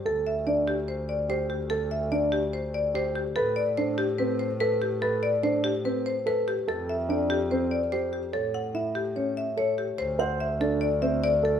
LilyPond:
<<
  \new Staff \with { instrumentName = "Marimba" } { \time 4/4 \key a \minor \tempo 4 = 145 a'8 e''8 d''8 g'8 c''8 d''8 c''8 g'8 | a'8 e''8 d''8 g'8 c''8 d''8 c''8 g'8 | a'8 d''8 c''8 g'8 b'8 c''8 b'8 g'8 | a'8 d''8 c''8 g'8 b'8 c''8 b'8 g'8 |
a'8 e''8 d''8 g'8 c''8 d''8 c''8 g'8 | a'8 fis''8 e''8 g'8 cis''8 e''8 cis''8 g'8 | \key d \mixolydian c''8 fis''8 e''8 a'8 d''8 e''8 d''8 a'8 | }
  \new Staff \with { instrumentName = "Grand piano" } { \time 4/4 \key a \minor a'8 r8 d'8 r4. g'8 r8 | a'8 r8 d'8 r4. g'8 r8 | b'8 r8 d'8 r8 c'8 r8 a'8 r8 | b'8 r8 d'8 r8 c'8 r8 a'8 r8 |
a'8 r8 d'8 r8 c'8 r8 g'8 r8 | cis''8 r8 e'8 r8 cis'8 r8 a'8 r8 | \key d \mixolydian r8 c''8 r8 d'8 r8 c'8 r8 a'8 | }
  \new Staff \with { instrumentName = "Double bass" } { \clef bass \time 4/4 \key a \minor d,1~ | d,1 | a,1~ | a,1 |
f,1 | a,1 | \key d \mixolydian d,1 | }
>>